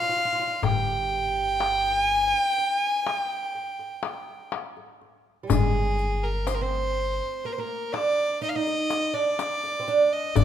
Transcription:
Already playing: F5
0.02 F4
0.09 F4
0.15 F4, darbuka ka
0.25 F4
0.33 F4
0.40 F4
0.47 F4
0.62 G1 G4 G5, darbuka dum
1.12 darbuka ka
1.60 darbuka tek
2.08 G#5
2.31 G5
2.58 darbuka ka
2.86 G#5
3.07 G5, darbuka tek
3.55 darbuka ka
3.79 darbuka ka
4.03 darbuka tek
4.52 darbuka tek
4.77 darbuka ka
5.02 darbuka ka
5.43 G3
5.50 G1 G#3 G#4, riq, darbuka dum
5.99 riq
6.23 A#4
6.47 C4 C5, riq, darbuka tek
6.54 A#4
6.61 C4 C5
6.71 darbuka ka
7.44 A#3 A#4, darbuka ka
7.52 C5
7.58 A#3 A#4
7.93 D4 D5, darbuka tek
8.42 D#4 D#5, riq
8.48 F5
8.56 D#4 D#5
8.67 riq, darbuka ka
8.90 riq, darbuka tek
9.14 D4 D5
9.39 riq, darbuka tek
9.64 riq, darbuka ka
9.80 C4
9.87 D4, riq, darbuka ka
10.12 D#5
10.36 G1 D4 D5, riq, darbuka dum

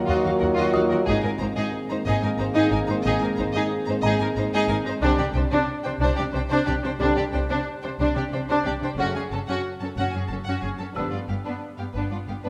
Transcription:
Already playing: D#3 F#3 A#3 F4
0.06 D#2 F4 F#4 D#5
0.22 D#2 F#4 F5
0.39 D#2 F#4 A#4 F#5
0.54 D#2 F4 D#5
0.59 F#4
0.72 D#2 F#4 D#5 F5 D#6
0.76 F#4
0.89 D#2 F#4 A#4 F#5
1.05 G#1 G#2 D#3 A#3 C4 D#4 G#4 D#5
1.23 G#2 D#4 A#4 G#5
1.38 G#1 G#2 D#4 C5 A#5
1.56 G#2 D#4 G#4 D#5
1.90 G#2 D#4 C5 A#5
2.06 G#1 G#2 D#4 G#4 D#5
2.22 G#2 D#4 A#4 G#5
2.38 G#1 G#2 D#4 C5 A#5
2.54 G#2 D#4 G#4 D#5
2.71 G#1 G#2 D#4 A#4 G#5
2.87 G#2 D#4 C5 A#5
3.02 G#1 G#2 D#4 G#4 D#5
3.18 G#2 A#4 G#5
3.22 D#4
3.36 G#1 G#2 D#4 C5 A#5
3.52 G#2 D#4 G#4 D#5
3.85 G#2 C5 A#5
3.90 D#4
4.01 G#1 G#2 G#4 D#5 A#5
4.06 D#4
4.19 G#2 D#4 A#4 G#5
4.36 G#1 G#2 D#4 C5 A#5
4.53 G#2 D#4 G#4 D#5
4.68 G#1 G#2 D#4 A#4 G#5
4.84 G#2 D#4 C5 A#5
5.00 C2 C3 D3 G3 C4 D4 G4 C5
5.18 C3 D4 G4 D5
5.34 C2 C3 D4 C5 G5
5.50 C3 D4 C5
5.84 C3 D4 C5 G5
6.00 C2 C3 D4 C5
6.16 C3 D4 G4 D5
6.33 C2 C3 D4 C5 G5
6.49 C3 D4 C5
6.67 C2 C3 D4 G4 D5
6.83 C3 D4 C5 G5
6.99 C2 C3 D3 G3 C4 D4 G4 C5
7.16 C3 D4 G4 D5
7.32 C2 C3 D4 C5 G5
7.49 C3 D4 C5
7.82 C3 D4 C5 G5
7.99 C2 C3 D4 C5
8.15 C3 D4 G4 D5
8.31 C2 C3 D4 C5 G5
8.48 C3 D4 C5
8.65 C2 C3 D4 G4 D5
8.81 C3 D4 C5 G5
8.97 F#1 F#2 C#3 F#3 A3 C#4 F#4 G#4 F#5
9.14 F#2 C#4 G#4 G#5
9.31 F#1 F#2 C#4 A4 A5
9.47 F#2 C#4 F#4 F#5
9.80 F#2 C#4 A4 A5
9.96 F#1 F#2 C#4 F#4 F#5
10.11 F#2 C#4 G#5
10.17 G#4
10.28 F#1 F#2 A5
10.32 C#4 A4
10.44 F#2 F#5
10.48 C#4 F#4
10.62 F#1 F#2 C#4 G#4 G#5
10.78 F#2 A4 A5
10.82 C#4
10.93 G1 G2 D3 F3 B3 D4 G4 B4 E6
10.98 B3
11.11 G2 B3 F4 D5
11.28 G1 G2 B3 G4 F5
11.44 G2 B3 D4 B4
11.77 G2 B3 G4 F5
11.93 G1 G2 D4 B4
11.97 B3
12.10 G2 B3 F4 D5
12.27 G1 G2 B3 G4 F5
12.43 G2 B3 D4 B4

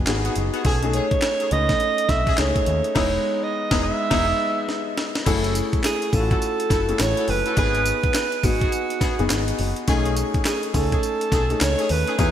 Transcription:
Already playing: B3 D#4 F#4 G4 G#4
0.07 G#1 B3 D#4 F#4 G#4, snare, clap, closed hi-hat
0.25 B3 F#4 G#4, closed hi-hat
0.36 F#1, closed hi-hat
0.53 B3 F#4 G#4, closed hi-hat
0.64 B1 A3 C#4 D#4 G#4 A4, kick, closed hi-hat
0.82 A3 C#4 D#4 G#4, closed hi-hat
0.93 A3 C#4 D#4 G#4 C#5, closed hi-hat
1.11 kick, closed hi-hat
1.22 snare, clap, closed hi-hat
1.40 A3 C#4 D#4 G#4, closed hi-hat
1.51 C#2 A3 C#4 D#4 B4 D#5, closed hi-hat
1.69 kick, snare, closed hi-hat
1.80 closed hi-hat
1.98 closed hi-hat
2.09 B1 E5, kick, snare, closed hi-hat
2.27 A3 C#4 D#4 G#4, kick, closed hi-hat
2.38 C#2 A3 C#4 D#4 G#4 C#5, snare, clap, closed hi-hat
2.56 kick, closed hi-hat
2.66 D#2, closed hi-hat
2.84 closed hi-hat
2.95 E1 G#3 B3 D#4 E4 G#4 C#5, kick, snare, crash
3.44 D#5
3.71 E1 G#3 B3 D#4 E4 G#4, kick, snare
3.83 E5
4.11 E1 G#3 B3 D#4 E4 G#4, kick, snare, crash
4.69 snare
4.98 snare
5.15 snare
5.26 F#1 A3 C#4 E4 F#4 G#4 A4, kick, closed hi-hat, crash, tambourine
5.44 closed hi-hat
5.55 closed hi-hat, tambourine
5.73 kick, closed hi-hat
5.84 G#4, snare, clap, closed hi-hat, tambourine
6.02 closed hi-hat
6.13 A1 A3 C#4 E4 F4 A4, kick, open hi-hat, tambourine
6.20 F#4
6.30 E4 F#4 A4, kick, closed hi-hat
6.42 closed hi-hat, tambourine
6.60 closed hi-hat
6.70 F#1 E4 F#4 A4, kick, snare, closed hi-hat, tambourine
6.88 A3 C#4 E4 G#4, closed hi-hat
6.99 A1 C#5, snare, clap, closed hi-hat, tambourine
7.17 E4 F#4 A4, closed hi-hat
7.28 F#1 B4, open hi-hat
7.46 E4 F#4 A4, closed hi-hat
7.57 G#1 B3 D#4 F#4 G#4 B4, kick, closed hi-hat, tambourine
7.75 closed hi-hat
7.86 closed hi-hat, tambourine
8.03 kick, closed hi-hat
8.14 snare, clap, closed hi-hat, tambourine
8.32 closed hi-hat
8.43 G#1 B3 D#4 F#4 G#4, kick, open hi-hat, tambourine
8.61 B3 F#4 G#4, kick, closed hi-hat
8.72 closed hi-hat, tambourine
8.90 closed hi-hat
9.01 B3 F#4 G#4, muted picked electric bass stroke, kick, snare, closed hi-hat, tambourine
9.19 F#1 B3 D#4 F#4 G#4, closed hi-hat
9.30 G#1, snare, clap, closed hi-hat, tambourine
9.48 closed hi-hat
9.59 F#1, open hi-hat
9.76 closed hi-hat
9.87 B1 A3 C#4 D#4 G#4, kick, closed hi-hat, tambourine
10.05 closed hi-hat
10.16 closed hi-hat, tambourine
10.34 kick, closed hi-hat
10.45 G#4, snare, clap, closed hi-hat, tambourine
10.63 closed hi-hat
10.70 A3 G#4, kick, open hi-hat
10.74 C#2 C#4 D#4 A4 G#5, tambourine
10.92 A3 C#4 D#4 G#4, kick, closed hi-hat
11.03 closed hi-hat, tambourine
11.21 closed hi-hat
11.32 B1 A3 C#4 D#4 G#4, kick, snare, closed hi-hat, tambourine
11.50 A3 C#4 D#4 G#4, closed hi-hat
11.61 C#2 C#5, snare, clap, closed hi-hat, tambourine
11.78 A3 C#4 D#4 G#4, closed hi-hat
11.89 D#2 B4, open hi-hat
12.07 A3 C#4 D#4 G#4, closed hi-hat
12.18 E2 B3 D#4 E4 F#4 G#4 B4, kick, closed hi-hat, tambourine

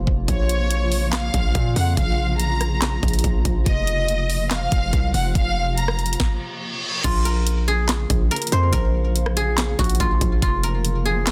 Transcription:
Already playing: C3 F3 A#3 F4
0.07 F1, kick
0.28 A#1 C#3 C#5, kick, closed hi-hat
0.49 closed hi-hat
0.71 closed hi-hat
0.92 open hi-hat
1.12 F5, snare, clap, closed hi-hat
1.34 A#1, kick, closed hi-hat
1.55 A#2, kick, closed hi-hat
1.76 F2 F#5, open hi-hat
1.97 A#1 F5, kick, closed hi-hat
2.39 A#5, closed hi-hat
2.61 cross-stick, closed hi-hat
2.82 snare, clap, closed hi-hat
3.03 A#1, kick, closed hi-hat
3.08 closed hi-hat
3.13 closed hi-hat
3.19 closed hi-hat
3.24 A#1, kick, closed hi-hat
3.45 A#1, kick, closed hi-hat
3.66 F1 C3 F3 F4 D#5, kick, closed hi-hat
3.87 closed hi-hat
4.08 closed hi-hat
4.30 open hi-hat
4.51 F5, snare, clap, closed hi-hat
4.72 F1, kick, closed hi-hat
4.93 C2, kick, closed hi-hat
5.14 F1 F#5, open hi-hat
5.35 F1 F5, kick, closed hi-hat
5.77 A#5, closed hi-hat
5.88 cross-stick
5.99 closed hi-hat
6.06 closed hi-hat
6.13 closed hi-hat
6.20 kick, snare, reverse cymbal
7.04 A#1 C#3 F3 A#3 F4, kick, closed hi-hat, crash
7.25 A#4, closed hi-hat
7.47 closed hi-hat
7.68 G#4
7.89 snare, clap, closed hi-hat
8.10 A#1, kick, closed hi-hat
8.31 A#4, closed hi-hat
8.36 closed hi-hat
8.42 closed hi-hat
8.47 closed hi-hat
8.52 F2 C5, closed hi-hat
8.72 A#1 A#4, kick, closed hi-hat
9.16 closed hi-hat
9.26 cross-stick
9.37 G#4, closed hi-hat
9.58 snare, clap, closed hi-hat
9.79 A#1 F#4, kick, closed hi-hat
9.84 closed hi-hat
9.89 closed hi-hat
9.95 closed hi-hat
10.00 A#1 F4, kick, closed hi-hat
10.21 A#1, kick, closed hi-hat
10.42 F1 C3 F4, kick, closed hi-hat
10.63 A#4, closed hi-hat
10.85 closed hi-hat
11.05 G#4
11.27 snare, clap, closed hi-hat

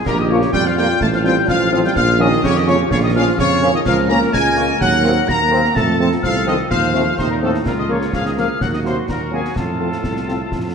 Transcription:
0.05 A#1 A#2 G4 A#4 A#5, concert bass drum, snare, crash
0.18 D#3 D#5 D#6
0.29 C#3 F3 A#3 F4 C#5 C#6
0.42 snare
0.53 F2 G3 F4 G5 G6, concert bass drum, snare
0.65 F3 F5 F6, snare
0.77 F3 G3 A#3 F4 G5 G6, snare
1.01 A1 A3 A5 A6, concert bass drum, snare
1.12 F3 F5 F6, snare
1.24 F3 G3 C4 F4 G5 G6, snare
1.47 A1 F3 F4 F5 F6, concert bass drum, snare
1.72 F3 C4 F4 F5 F6
1.83 G3 G5 G6, snare
1.94 A#1 F3 F5 F6, concert bass drum, snare
2.18 D#3 F3 A#3 C#4 F4 D#5 D#6
2.32 snare
2.43 F2 C#3 G4 C#5 C#6, concert bass drum, snare
2.55 D#3 D#5 D#6, snare
2.67 C#3 F3 A#3 C#4 F4 C#5 C#6, snare
2.91 A#1 C#3 F4 C#5 C#6, concert bass drum, snare
3.02 D#3 D#5 D#6
3.14 F3 A#3 C#4 F4 F5 F6
3.38 F2 C#3 C#5 C#6, concert bass drum, snare
3.62 F3 A#3 C#4 F4
3.73 D#3 D#5 D#6
3.85 C#2 F3 A#4 F5 F6, concert bass drum, snare, crash
4.09 A#3 C#4 A#4 A#5 A#6
4.22 snare
4.33 C#2 G#3 G#5 G#6, concert bass drum, snare
4.46 snare
4.55 A#3 C#4 A#4, snare
4.80 D#2 F#3 F#5 F#6, concert bass drum, snare
4.93 snare
5.03 A#3 C4 F#4 A#4, snare
5.28 D#2 A#3 A#5 A#6, concert bass drum, snare
5.51 A#3 C4 F#4 A#4
5.64 snare
5.75 F2 A3 A4 A5 A6, concert bass drum, snare
5.99 F3 A3 C4 F4 A4 A5 A6
6.12 snare
6.23 C2 F3 A4 F5 F6, concert bass drum, snare
6.36 snare
6.46 D#3 F3 C4 F4 A4 D#5 D#6, snare
6.70 D#2 F3 C5 F5 F6, concert bass drum, snare
6.83 snare
6.94 F3 A3 C4 F4 A4, snare
7.18 D#2 C3 D#4 C5 C6, concert bass drum, snare
7.30 A#2 A#4 A#5
7.42 A2 F3 A3 C4 F4 A4 A5
7.54 snare
7.65 C#2 A#2 F4 A#4 A#5, concert bass drum, snare, crash
7.77 D#3 D#5 D#6
7.88 C#3 F3 A#3 F4 A#4 C#5
7.92 C#6
8.02 snare
8.13 C#2 F3 G#4 F5 F6, concert bass drum, snare
8.25 D#3 D#5 D#6, snare
8.36 F3 A#3 F4 A#4 F5 F6, snare
8.60 D#2 F#3 F#4 F#5 F#6, concert bass drum, snare
8.72 D#3 D#5 D#6, snare
8.83 C3 F#3 A#3 C4 F#4 A#4 C5 C6, snare
9.08 D#2 A#2 F#4 A#4 A#5, concert bass drum, snare
9.31 G#2 F#3 A#3 C4 F#4 G#4 A#4 G#5
9.45 snare
9.55 F2 A2 F4 A4 A5, concert bass drum, snare
9.79 F3 C4 F4 A4
9.92 snare
10.03 C2, concert bass drum, snare
10.16 snare
10.26 F3 C4 F4 A4, snare
10.51 F2, concert bass drum, snare

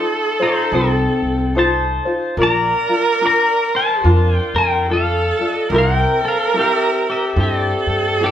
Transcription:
Already playing: D#4 F4 A4 C5 D#5
0.40 D#4 F4 C5
0.72 C2 C4 D#4 F4 A4 C5
1.22 C2
1.55 D#4 F4 A4 C5
1.59 A5
2.05 D#4 F4 C5
2.37 A#1 D4 F4 A#4
2.42 D5 A#5
2.89 D4 F4
3.00 A5
3.21 D4 F4 A#4
3.26 D5 A#5
3.75 C5 A5
4.04 F2 D4 F4 A#4
4.36 G5
4.54 F2 A#4
4.58 G5
4.86 D4 F4 A4
4.90 A4 F5
5.39 D4 F4 A4
5.53 D#5
5.69 C2 C4 E4 G4 A#4
5.73 A#4
5.78 F#5
5.96 G5
6.24 C4 A4 F5
6.54 C4 E4 G4 A#4
6.59 G4 F5
6.73 E5
7.10 G4 E5
7.36 G2 C4 E4 G4 A4
7.41 G4 D5
7.87 G2
8.20 C4 E4 G4
8.24 G4 D5

